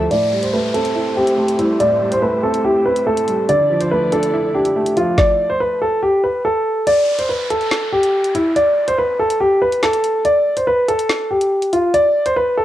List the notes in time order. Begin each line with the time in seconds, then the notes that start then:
Already playing: D3 F3 A3 D4 E4
0.11 A2 A3 G4 C5 D5, closed hi-hat, downlifter
0.32 G3
0.42 C5, closed hi-hat
0.53 A3 B4
0.74 C4 A4, closed hi-hat
0.85 closed hi-hat
0.96 E4
1.16 C4 G4
1.27 closed hi-hat
1.38 A3
1.48 closed hi-hat
1.59 G3 E4, closed hi-hat
1.80 A2 D5, closed hi-hat
2.01 G3
2.12 C5, closed hi-hat
2.22 A3 B4
2.43 C4 A4
2.54 closed hi-hat
2.64 E4 G4
2.86 C4 B4
2.96 closed hi-hat
3.07 A3 A4
3.17 closed hi-hat
3.28 G3, closed hi-hat
3.49 D3 F3 E4 D5, closed hi-hat
3.70 F3
3.81 C5, closed hi-hat
3.91 A3 B4
4.12 D4 A4, closed hi-hat
4.23 closed hi-hat
4.34 E4
4.54 D4 G4
4.65 closed hi-hat
4.76 A3
4.86 closed hi-hat
4.97 F3 F4, closed hi-hat
5.18 D5, kick, snare
5.50 C5
5.60 B4
5.82 A4
6.03 G4
6.24 B4
6.45 A4
6.87 D5, closed hi-hat, downlifter
7.19 C5, closed hi-hat
7.29 B4
7.50 A4, closed hi-hat
7.61 closed hi-hat
7.71 snare
7.93 G4
8.03 closed hi-hat
8.24 closed hi-hat
8.35 E4, closed hi-hat
8.56 D5, closed hi-hat
8.88 C5, closed hi-hat
8.98 B4
9.19 A4
9.30 closed hi-hat
9.40 G4
9.62 B4
9.72 closed hi-hat
9.83 A4, snare
9.93 closed hi-hat
10.04 closed hi-hat
10.25 D5, closed hi-hat
10.57 C5, closed hi-hat
10.67 B4
10.88 A4, closed hi-hat
10.99 closed hi-hat
11.09 snare
11.31 G4
11.41 closed hi-hat
11.62 closed hi-hat
11.73 F4, closed hi-hat
11.94 D5, closed hi-hat
12.26 C5, closed hi-hat
12.36 B4
12.57 A4